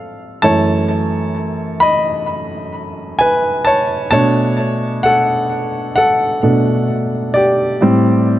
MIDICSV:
0, 0, Header, 1, 2, 480
1, 0, Start_track
1, 0, Key_signature, 2, "minor"
1, 0, Tempo, 923077
1, 220, Time_signature, 4, 2, 24, 8
1, 4364, End_track
2, 0, Start_track
2, 0, Title_t, "Grand piano"
2, 0, Program_c, 0, 0
2, 0, Control_c, 0, 64, 127
2, 0, Note_on_c, 0, 69, 70
2, 0, Note_on_c, 0, 77, 89
2, 203, Note_off_c, 0, 69, 0
2, 219, Note_on_c, 0, 81, 106
2, 223, Note_on_c, 0, 42, 59
2, 226, Note_on_c, 0, 52, 56
2, 227, Control_c, 0, 64, 0
2, 229, Note_on_c, 0, 57, 63
2, 230, Note_on_c, 0, 73, 83
2, 248, Note_off_c, 0, 77, 0
2, 308, Control_c, 0, 64, 127
2, 919, Note_off_c, 0, 81, 0
2, 920, Note_off_c, 0, 42, 0
2, 922, Note_off_c, 0, 52, 0
2, 924, Note_off_c, 0, 57, 0
2, 924, Note_off_c, 0, 73, 0
2, 937, Note_on_c, 0, 83, 98
2, 949, Note_on_c, 0, 75, 75
2, 1657, Note_on_c, 0, 80, 99
2, 1668, Note_on_c, 0, 71, 75
2, 1878, Note_off_c, 0, 83, 0
2, 1883, Note_off_c, 0, 75, 0
2, 1888, Note_off_c, 0, 71, 0
2, 1896, Note_on_c, 0, 81, 96
2, 1906, Note_off_c, 0, 80, 0
2, 1908, Note_on_c, 0, 73, 73
2, 2127, Note_off_c, 0, 73, 0
2, 2127, Note_off_c, 0, 81, 0
2, 2135, Note_on_c, 0, 81, 115
2, 2141, Note_on_c, 0, 47, 63
2, 2143, Note_on_c, 0, 57, 56
2, 2146, Note_on_c, 0, 62, 71
2, 2147, Control_c, 0, 64, 0
2, 2147, Note_on_c, 0, 73, 97
2, 2245, Control_c, 0, 64, 127
2, 2597, Note_off_c, 0, 81, 0
2, 2603, Note_off_c, 0, 73, 0
2, 2616, Note_on_c, 0, 78, 103
2, 2629, Note_on_c, 0, 69, 75
2, 2840, Note_off_c, 0, 47, 0
2, 2841, Note_off_c, 0, 57, 0
2, 2842, Note_off_c, 0, 62, 0
2, 3083, Note_off_c, 0, 69, 0
2, 3089, Note_off_c, 0, 78, 0
2, 3097, Note_on_c, 0, 78, 93
2, 3107, Note_on_c, 0, 69, 73
2, 3342, Note_on_c, 0, 47, 51
2, 3345, Note_on_c, 0, 57, 47
2, 3347, Note_on_c, 0, 62, 53
2, 3560, Note_off_c, 0, 47, 0
2, 3562, Note_off_c, 0, 57, 0
2, 3563, Note_off_c, 0, 62, 0
2, 3803, Note_off_c, 0, 69, 0
2, 3816, Note_on_c, 0, 74, 78
2, 3827, Note_on_c, 0, 67, 62
2, 3840, Note_off_c, 0, 78, 0
2, 4062, Note_on_c, 0, 45, 64
2, 4065, Note_on_c, 0, 55, 58
2, 4067, Control_c, 0, 64, 0
2, 4068, Note_on_c, 0, 60, 70
2, 4157, Control_c, 0, 64, 127
2, 4364, Note_off_c, 0, 45, 0
2, 4364, Note_off_c, 0, 55, 0
2, 4364, Note_off_c, 0, 60, 0
2, 4364, Note_off_c, 0, 67, 0
2, 4364, Note_off_c, 0, 74, 0
2, 4364, End_track
0, 0, End_of_file